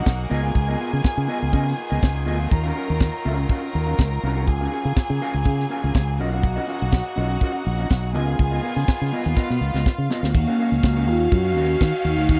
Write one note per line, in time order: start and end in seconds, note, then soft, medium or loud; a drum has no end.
0.00 0.27 C#3 medium
0.00 0.28 F#3 medium
0.00 2.48 A#3 medium
0.00 0.28 D#4 medium
0.00 0.27 F#4 medium
0.00 0.27 F#5 medium
0.05 0.25 B1 medium
0.05 muted clean electric guitar stroke soft
0.05 kick loud
0.05 snare loud
0.05 closed hi-hat medium
0.19 muted clean electric guitar stroke soft
0.30 0.50 C#2 loud
0.30 4.43 D#3 medium
0.30 0.43 B3 loud
0.30 2.49 B3 medium
0.30 6.15 F4 medium
0.30 0.43 F4 loud
0.30 2.48 G#4 medium
0.30 0.43 A#4 loud
0.30 0.43 D#5 loud
0.30 2.47 G#5 loud
0.30 open hi-hat soft
0.44 0.53 B3 soft
0.44 0.53 F4 medium
0.44 0.53 A#4 medium
0.44 closed hi-hat soft
0.54 0.74 C#2 loud
0.54 muted clean electric guitar stroke soft
0.54 kick loud
0.54 closed hi-hat medium
0.68 0.78 B3 medium
0.68 0.79 F4 medium
0.68 0.79 A#4 medium
0.68 0.80 D#5 medium
0.80 0.95 B3 medium
0.80 0.92 F4 medium
0.80 0.92 A#4 medium
0.80 0.92 F5 medium
0.80 open hi-hat medium
0.92 1.02 C#3 medium
0.92 muted clean electric guitar stroke soft
0.92 closed hi-hat soft
1.04 muted fingered electric bass stroke soft
1.04 kick loud
1.04 snare loud
1.04 closed hi-hat medium
1.17 1.26 C#3 loud
1.17 muted clean electric guitar stroke soft
1.27 1.48 B3 medium
1.27 1.40 F4 medium
1.27 1.40 A#4 medium
1.27 1.40 D#5 loud
1.27 open hi-hat medium
1.41 1.51 C#2 medium
1.41 muted clean electric guitar stroke medium
1.41 closed hi-hat soft
1.52 1.72 C#3 loud
1.52 1.72 B3 medium
1.52 1.65 F4 medium
1.52 1.65 A#4 medium
1.52 1.65 D#5 medium
1.52 kick loud
1.52 closed hi-hat soft
1.66 muted clean electric guitar stroke soft
1.66 snare soft
1.77 muted clean electric guitar stroke soft
1.77 open hi-hat medium
1.90 2.00 C#2 loud
1.90 2.01 B3 soft
1.90 2.01 F4 soft
1.90 2.01 A#4 medium
1.90 2.01 D#5 medium
1.90 closed hi-hat soft
2.02 2.28 C#2 medium
2.02 muted clean electric guitar stroke medium
2.02 kick loud
2.02 snare loud
2.02 closed hi-hat medium
2.15 muted clean electric guitar stroke soft
2.26 2.46 D2 medium
2.26 2.39 B3 medium
2.26 2.39 F4 loud
2.26 2.38 A#4 loud
2.26 2.38 D#5 loud
2.26 open hi-hat medium
2.39 2.50 B3 medium
2.39 2.51 F4 medium
2.39 2.50 A#4 medium
2.39 2.50 F5 medium
2.39 closed hi-hat soft
2.51 2.70 D#2 loud
2.51 4.45 F#3 medium
2.51 4.45 C#4 medium
2.51 3.47 A#4 medium
2.51 3.47 A#5 medium
2.51 muted clean electric guitar stroke soft
2.51 kick loud
2.51 closed hi-hat medium
2.64 2.74 C#4 medium
2.64 2.74 F#4 medium
2.64 2.75 A#4 medium
2.64 2.76 F5 medium
2.75 2.91 C#4 medium
2.75 2.88 F#4 medium
2.75 2.87 A#4 medium
2.75 2.87 F#5 medium
2.75 open hi-hat medium
2.88 3.08 D#2 medium
2.88 muted clean electric guitar stroke soft
2.88 closed hi-hat soft
3.00 kick loud
3.00 snare loud
3.00 closed hi-hat medium
3.13 muted clean electric guitar stroke soft
3.25 3.44 C#2 medium
3.25 3.45 C#4 medium
3.25 3.38 F#4 medium
3.25 3.38 A#4 medium
3.25 3.37 F5 medium
3.25 open hi-hat medium
3.38 muted clean electric guitar stroke soft
3.38 closed hi-hat soft
3.48 3.69 C#4 medium
3.48 3.62 F#4 medium
3.48 4.45 A#4 medium
3.48 3.62 A#4 medium
3.48 3.61 F5 medium
3.48 4.45 A#5 medium
3.48 kick loud
3.48 closed hi-hat soft
3.62 muted clean electric guitar stroke soft
3.73 3.93 D#2 loud
3.73 muted clean electric guitar stroke soft
3.73 open hi-hat medium
3.86 3.98 C#4 medium
3.86 3.98 F#4 medium
3.86 3.98 A#4 medium
3.86 3.99 F5 medium
3.86 closed hi-hat soft
3.98 4.17 C#2 medium
3.98 muted clean electric guitar stroke soft
3.98 kick loud
3.98 snare loud
3.98 closed hi-hat medium
4.12 muted clean electric guitar stroke soft
4.22 4.47 C2 loud
4.22 4.36 C#4 medium
4.22 4.36 F#4 medium
4.22 4.36 A#4 loud
4.22 4.36 F5 medium
4.22 open hi-hat medium
4.36 4.47 C#4 soft
4.36 4.47 F#4 medium
4.36 4.47 A#4 medium
4.36 4.49 F#5 medium
4.36 closed hi-hat soft
4.47 4.66 C#2 loud
4.47 8.11 C#3 medium
4.47 6.17 F#3 medium
4.47 6.17 A#3 medium
4.47 6.15 G#4 medium
4.47 6.15 G#5 medium
4.47 muted clean electric guitar stroke soft
4.47 kick medium
4.47 closed hi-hat medium
4.60 4.71 C#4 medium
4.60 4.71 F#4 medium
4.60 4.72 A#4 medium
4.60 4.73 F5 medium
4.72 4.87 C#4 medium
4.72 4.85 F#4 medium
4.72 4.84 A#4 medium
4.72 4.85 F#5 medium
4.72 open hi-hat medium
4.85 4.94 C#3 medium
4.85 muted clean electric guitar stroke soft
4.85 closed hi-hat soft
4.96 kick loud
4.96 snare loud
4.96 closed hi-hat medium
5.10 5.19 C#3 loud
5.10 muted clean electric guitar stroke soft
5.21 5.41 C#4 medium
5.21 5.34 F#4 medium
5.21 5.33 A#4 medium
5.21 5.33 F5 loud
5.21 open hi-hat medium
5.34 5.43 C#2 medium
5.34 muted clean electric guitar stroke medium
5.34 closed hi-hat soft
5.45 5.64 C#3 loud
5.45 muted clean electric guitar stroke soft
5.45 kick loud
5.45 closed hi-hat soft
5.59 muted clean electric guitar stroke soft
5.59 snare soft
5.70 5.84 C#4 medium
5.70 5.83 F#4 medium
5.70 5.82 A#4 medium
5.70 5.82 F5 medium
5.70 open hi-hat medium
5.83 5.92 C#2 loud
5.83 5.95 C#4 medium
5.83 5.95 F#4 soft
5.83 5.95 A#4 medium
5.83 5.96 F5 medium
5.83 closed hi-hat soft
5.94 6.20 C#2 medium
5.94 muted clean electric guitar stroke soft
5.94 kick loud
5.94 snare loud
5.94 closed hi-hat medium
6.09 muted clean electric guitar stroke soft
6.18 6.57 B1 loud
6.18 8.12 F#3 medium
6.18 8.12 A#3 medium
6.18 6.32 C#4 medium
6.18 8.13 D#4 medium
6.18 6.32 F4 medium
6.18 8.10 F#4 medium
6.18 6.32 A#4 medium
6.18 6.31 D#5 loud
6.18 8.10 F#5 medium
6.18 open hi-hat medium
6.32 6.43 C#4 soft
6.32 6.44 F4 medium
6.32 6.44 A#4 medium
6.32 6.45 F5 medium
6.32 closed hi-hat medium
6.43 muted clean electric guitar stroke soft
6.43 kick loud
6.43 closed hi-hat medium
6.56 6.66 C#4 medium
6.56 6.67 F4 medium
6.56 6.67 A#4 medium
6.56 6.69 D#5 medium
6.68 6.83 C#4 medium
6.68 6.80 F4 medium
6.68 6.80 A#4 medium
6.68 6.80 F5 medium
6.68 open hi-hat medium
6.80 7.00 B1 medium
6.80 muted clean electric guitar stroke soft
6.80 closed hi-hat soft
6.92 kick loud
6.92 snare loud
6.92 closed hi-hat medium
7.05 muted clean electric guitar stroke soft
7.16 7.36 B1 medium
7.16 7.36 C#4 medium
7.16 7.29 F4 medium
7.16 7.29 A#4 medium
7.16 7.28 D#5 medium
7.16 open hi-hat medium
7.29 muted clean electric guitar stroke soft
7.29 closed hi-hat soft
7.41 7.61 C#4 medium
7.41 7.54 F4 medium
7.41 7.54 A#4 medium
7.41 7.53 D#5 medium
7.41 kick loud
7.41 closed hi-hat soft
7.55 muted clean electric guitar stroke soft
7.65 7.85 A#1 loud
7.65 muted clean electric guitar stroke soft
7.65 open hi-hat medium
7.78 7.89 C#4 soft
7.78 7.89 F4 medium
7.78 7.90 A#4 medium
7.78 7.90 D#5 medium
7.78 closed hi-hat soft
7.90 8.15 B1 medium
7.90 kick loud
7.90 snare loud
7.90 closed hi-hat medium
8.03 muted clean electric guitar stroke soft
8.13 8.34 C#2 medium
8.13 10.18 D#3 medium
8.13 10.18 A#3 medium
8.13 8.26 B3 medium
8.13 10.18 B3 medium
8.13 8.26 F4 medium
8.13 10.18 F4 medium
8.13 9.35 G#4 medium
8.13 8.26 A#4 loud
8.13 8.26 D#5 loud
8.13 9.35 G#5 loud
8.13 open hi-hat medium
8.26 8.37 B3 medium
8.26 8.37 F4 medium
8.26 8.37 A#4 medium
8.26 8.39 F5 medium
8.26 closed hi-hat medium
8.38 8.58 C#2 loud
8.38 muted clean electric guitar stroke soft
8.38 kick loud
8.38 closed hi-hat medium
8.51 8.61 B3 medium
8.51 8.62 F4 medium
8.51 8.62 A#4 medium
8.51 8.64 D#5 medium
8.63 8.79 B3 medium
8.63 8.77 F4 medium
8.63 8.76 A#4 medium
8.63 8.76 F5 medium
8.63 open hi-hat medium
8.76 8.85 C#3 medium
8.76 muted clean electric guitar stroke medium
8.76 closed hi-hat soft
8.88 kick loud
8.88 snare loud
8.88 closed hi-hat medium
9.01 9.10 C#3 medium
9.01 muted clean electric guitar stroke soft
9.12 9.32 B3 medium
9.12 9.25 F4 medium
9.12 9.25 A#4 medium
9.12 9.25 D#5 medium
9.12 open hi-hat medium
9.25 9.34 D#2 medium
9.25 muted clean electric guitar stroke soft
9.25 closed hi-hat soft
9.36 9.56 B3 medium
9.36 9.50 F4 medium
9.36 10.32 F4 medium
9.36 9.50 A#4 medium
9.36 9.49 D#5 medium
9.36 10.32 F5 medium
9.36 kick loud
9.36 snare soft
9.50 9.59 B2 medium
9.50 muted clean electric guitar stroke soft
9.50 snare soft
9.61 9.71 C#2 medium
9.61 muted clean electric guitar stroke soft
9.74 9.83 C#2 medium
9.74 9.85 B3 medium
9.74 9.85 F4 medium
9.74 9.85 A#4 medium
9.74 9.85 D#5 medium
9.74 snare medium
9.86 muted clean electric guitar stroke soft
9.86 kick loud
9.86 snare medium
9.98 10.07 C#3 medium
9.98 muted clean electric guitar stroke soft
10.10 10.23 B3 medium
10.10 10.22 F4 medium
10.10 10.22 A#4 medium
10.10 10.23 D#5 medium
10.10 snare medium
10.23 10.32 D2 medium
10.23 10.35 B3 soft
10.23 10.35 F4 medium
10.23 10.35 A#4 medium
10.23 10.35 F5 medium
10.23 snare medium
10.33 10.45 D#2 loud
10.33 12.40 D#3 medium
10.33 12.40 F#3 medium
10.33 11.10 A#3 loud
10.33 12.40 C#4 medium
10.33 12.40 F#4 medium
10.33 12.40 F5 loud
10.33 12.40 F5 medium
10.33 muted clean electric guitar stroke soft
10.33 kick loud
10.33 crash loud
10.47 10.57 C#4 medium
10.47 10.58 F#4 medium
10.47 10.58 A#4 medium
10.47 10.59 F5 medium
10.47 closed hi-hat soft
10.58 10.74 C#4 medium
10.58 10.71 F#4 medium
10.58 10.70 A#4 medium
10.58 10.70 F5 medium
10.58 open hi-hat medium
10.71 10.81 C#2 medium
10.71 muted clean electric guitar stroke medium
10.71 closed hi-hat soft
10.83 11.07 C#2 medium
10.83 muted clean electric guitar stroke soft
10.83 kick loud
10.83 snare loud
10.96 11.06 C#4 medium
10.96 11.07 F#4 medium
10.96 11.07 A#4 medium
10.96 11.08 F#5 medium
10.96 closed hi-hat soft
11.07 11.26 D#2 loud
11.07 11.30 F4 loud
11.07 muted clean electric guitar stroke soft
11.07 open hi-hat medium
11.20 muted clean electric guitar stroke soft
11.20 closed hi-hat soft
11.31 11.56 F#2 medium
11.31 12.08 F#4 loud
11.31 muted clean electric guitar stroke soft
11.31 kick loud
11.31 closed hi-hat medium
11.45 11.55 C#4 medium
11.45 11.56 F#4 medium
11.45 11.56 A#4 medium
11.45 11.57 F#5 medium
11.45 closed hi-hat medium
11.55 11.75 D#2 loud
11.55 11.75 C#4 medium
11.55 11.68 F#4 medium
11.55 11.68 A#4 loud
11.55 11.68 F5 loud
11.55 open hi-hat medium
11.69 muted clean electric guitar stroke soft
11.69 closed hi-hat medium
11.81 11.91 D#3 medium
11.81 muted clean electric guitar stroke soft
11.81 kick loud
11.81 snare loud
11.93 muted clean electric guitar stroke medium
11.93 closed hi-hat soft
12.04 12.15 D#2 loud
12.04 12.30 D#4 medium
12.04 open hi-hat medium
12.18 12.26 D2 medium
12.18 muted clean electric guitar stroke medium
12.18 closed hi-hat medium
12.29 12.39 D#2 loud
12.29 12.40 D#4 loud
12.29 muted clean electric guitar stroke medium
12.29 kick loud
12.29 closed hi-hat medium